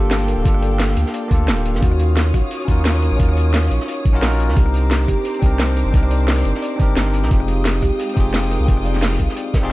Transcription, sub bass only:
0.00 0.36 G1 medium
0.37 0.44 D1 loud
0.45 0.95 G1 loud
0.97 1.05 D2 loud
1.31 1.50 D2 medium
1.48 1.76 D1 loud
1.74 1.82 G1 medium
1.82 2.33 D#2 loud
2.34 2.42 A#1 loud
2.68 3.10 D#2 medium
3.11 3.19 A#1 loud
3.20 3.70 D#2 loud
3.71 3.79 A#1 loud
4.05 4.21 A#1 medium
4.22 4.50 A#1 loud
4.49 4.56 D#2 medium
4.57 5.07 C2 loud
5.08 5.16 G1 loud
5.42 5.84 C2 medium
5.86 5.93 G1 loud
5.94 6.44 C2 loud
6.45 6.53 G1 loud
6.80 6.95 G1 medium
6.97 7.25 G1 loud
7.23 7.30 C2 medium
7.31 7.81 F1 loud
7.82 7.91 C2 loud
8.17 8.59 F1 medium
8.60 8.67 C2 loud
8.68 9.18 F1 loud
9.20 9.28 C2 loud
9.63 9.72 F1 medium

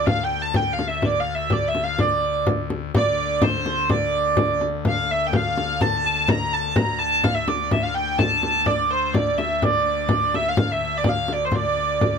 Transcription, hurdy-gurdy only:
0.06 0.24 F5 loud
0.24 0.42 G5 medium
0.42 0.56 A5 medium
0.56 0.73 G5 medium
0.73 0.88 F5 medium
0.88 1.05 E5 medium
1.05 1.20 D5 medium
1.20 1.35 F5 medium
1.35 1.52 E5 medium
1.52 1.68 D5 medium
1.68 1.84 E5 medium
1.84 2.00 F5 medium
2.00 2.44 D5 medium
2.96 3.43 D5 loud
3.43 3.90 C5 medium
3.90 4.61 D5 medium
4.88 5.11 F5 medium
5.11 5.27 E5 medium
5.27 5.35 G5 medium
5.35 5.82 F5 medium
5.81 6.06 A5 loud
6.06 6.29 A5 loud
6.29 6.53 A#5 loud
6.53 6.76 A5 medium
6.76 7.00 A#5 loud
6.98 7.24 A5 loud
7.24 7.35 F5 loud
7.35 7.48 E5 medium
7.48 7.72 D5 medium
7.72 7.83 E5 medium
7.83 7.94 F5 medium
7.94 8.18 G5 medium
8.18 8.67 A5 loud
8.66 8.91 D5 medium
8.91 9.15 C5 medium
9.14 9.38 D5 medium
9.37 9.63 E5 medium
9.63 10.35 D5 medium
10.35 10.48 E5 medium
10.48 10.72 F5 medium
10.72 10.97 E5 medium
10.97 11.09 D5 medium
11.09 11.33 F5 medium
11.33 11.45 D5 medium
11.45 11.55 C5 medium
11.55 12.19 D5 medium

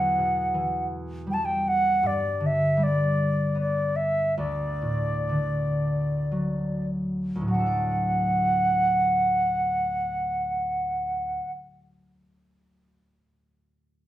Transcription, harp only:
0.00 2.07 E2 medium
0.18 2.07 B2 soft
0.54 2.07 E3 soft
1.27 2.07 G3 soft
2.03 4.42 G2 medium
2.40 4.42 D3 soft
2.77 4.42 G3 soft
3.55 6.65 B3 soft
4.37 7.34 D2 soft
4.82 5.33 A2 soft
5.29 7.55 D3 soft
6.32 7.46 F#3 soft
7.35 11.36 D2 soft
7.41 11.41 A2 soft
7.48 11.48 F#3 soft
7.54 11.54 D4 soft
7.60 11.60 A4 soft
7.66 11.66 D5 soft

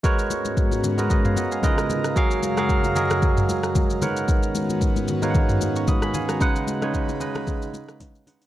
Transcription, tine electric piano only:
0.03 0.78 G#3 loud
0.03 0.79 F#4 loud
0.03 0.79 A#4 loud
0.03 0.79 B4 loud
0.03 0.79 C#5 loud
0.98 1.61 G#3 medium
0.98 1.63 F#4 medium
0.98 1.10 A#4 medium
0.98 1.10 B4 medium
0.98 1.09 D#5 medium
1.10 1.24 B4 medium
1.10 1.24 D#5 medium
1.25 1.36 C#5 medium
1.25 1.36 F5 medium
1.37 1.51 D#5 medium
1.37 1.51 F#5 medium
1.52 1.77 F5 medium
1.52 1.77 G#5 medium
1.62 2.06 C#3 medium
1.62 2.06 G#3 medium
1.62 1.70 D#4 medium
1.62 2.07 A#4 medium
1.62 2.07 B4 medium
1.62 2.07 D#5 medium
1.69 2.10 F4 medium
2.16 2.48 F#3 loud
2.16 2.49 F#4 loud
2.16 2.49 G#4 loud
2.16 2.49 A#4 loud
2.16 2.49 F5 loud
2.57 2.88 F#3 medium
2.57 2.89 F#4 medium
2.57 2.89 G#4 medium
2.57 2.89 A#4 medium
2.57 2.89 F5 medium
2.95 3.81 F#3 medium
2.95 3.81 F#4 medium
2.95 3.81 G#4 medium
2.95 3.82 A#4 medium
2.95 3.82 D#5 medium
4.01 4.87 G#3 medium
4.01 4.87 D#4 medium
4.01 4.88 A#4 medium
4.01 4.88 B4 medium
4.01 4.88 C#5 medium
4.01 4.88 F#5 loud
5.22 6.07 G#3 medium
5.22 6.07 D#4 medium
5.22 6.07 A#4 medium
5.22 6.08 B4 medium
5.22 6.08 C#5 medium
5.22 5.29 F5 medium
5.30 5.65 F#5 medium
5.76 5.88 A#5 medium
5.76 5.88 C#6 medium
5.88 6.01 B5 medium
5.88 6.02 D#6 medium
6.03 6.13 G#5 medium
6.03 6.14 B5 medium
6.15 6.29 F5 medium
6.15 6.28 G#5 medium
6.29 6.41 F#5 medium
6.29 6.54 A#5 medium
6.40 6.73 C#3 loud
6.40 6.73 G#3 loud
6.40 6.73 D#4 loud
6.40 6.74 B4 loud
6.40 6.74 F#5 loud
6.81 7.13 C#3 medium
6.81 7.13 G#3 medium
6.81 7.14 D#4 medium
6.81 7.14 B4 medium
6.81 7.14 C#5 medium
7.20 8.06 C#3 medium
7.20 8.06 G#3 medium
7.20 8.06 D#4 medium
7.20 8.06 B4 medium
7.20 8.07 D#5 medium
8.26 8.47 C#3 medium
8.26 8.47 G#3 medium
8.26 8.47 D#4 medium
8.26 8.47 B4 medium
8.26 8.47 F#5 medium

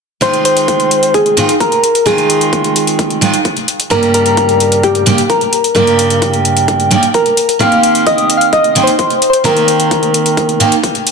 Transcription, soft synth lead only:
0.22 0.44 C5 loud
0.45 1.16 C5 loud
1.14 1.62 G#4 medium
1.60 2.08 A#4 medium
2.07 2.76 G#4 medium
3.91 4.13 A#4 loud
4.14 4.85 A#4 loud
4.84 5.31 G4 loud
5.30 5.75 A#4 medium
5.76 6.41 A#4 medium
7.14 7.57 A#4 medium
7.61 8.03 F5 loud
8.07 8.39 D#5 loud
8.37 8.52 F5 loud
8.53 8.85 D#5 loud
8.84 9.29 C5 medium
9.30 9.37 C5 medium
9.45 10.80 A#4 medium

